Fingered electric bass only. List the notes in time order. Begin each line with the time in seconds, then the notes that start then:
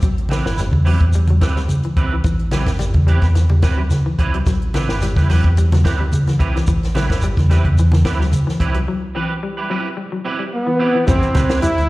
0.03 A1
0.46 G1
0.73 E2
1.01 E2
1.41 D2
1.97 C2
2.24 A1
2.66 G1
2.95 E2
3.22 E2
3.63 D2
4.19 C2
4.46 A1
4.88 G1
5.17 E2
5.44 E2
5.85 D2
6.40 C2
6.68 A1
7.10 G1
7.37 E2
7.65 E2
8.05 D2
8.61 C2
11.08 A1
11.35 C2
11.78 D2